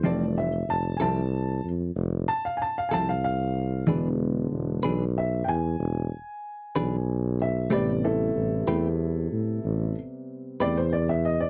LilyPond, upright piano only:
<<
  \new Staff \with { instrumentName = "Upright piano" } { \time 12/8 \key a \minor \tempo 4. = 63 d''8 e''8 a''8 <gis'' a''>4 r4 a''16 f''16 <gis'' a''>16 f''16 <gis'' a''>16 f''16 f''4 | r2 e''8 <g'' gis''>2. e''8 | d''8 <e' a'>2. r4 d''16 c''16 d''16 e''16 dis''16 d''16 | }
  \new Staff \with { instrumentName = "Upright piano" } { \clef bass \time 12/8 \key a \minor <e g a>8 r1 r4. | <d gis b>4. r1 r8 | <c g b>1. | }
>>